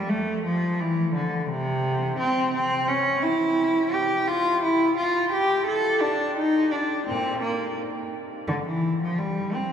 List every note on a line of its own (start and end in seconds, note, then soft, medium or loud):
0.09 0.45 A3 loud
0.45 0.79 F3 loud
0.80 1.15 E3 loud
1.15 1.49 D3 medium
1.50 2.18 C3 loud
2.19 2.53 C4 loud
2.54 2.88 C4 loud
2.88 3.23 C#4 loud
3.23 3.92 E4 loud
3.93 4.28 G4 medium
4.27 4.62 F4 loud
4.62 4.96 E4 loud
4.97 5.31 F4 medium
5.32 5.66 G4 loud
5.67 6.01 A4 loud
6.01 6.36 D4 loud
6.37 6.71 D#4 loud
6.72 7.06 D4 medium
7.07 7.39 A#2 medium
7.07 7.41 C4 medium
7.42 7.76 A#3 medium
8.48 8.55 D3 loud
8.65 9.00 E3 medium
9.03 9.19 F3 medium
9.19 9.53 G3 medium
9.54 9.72 C4 medium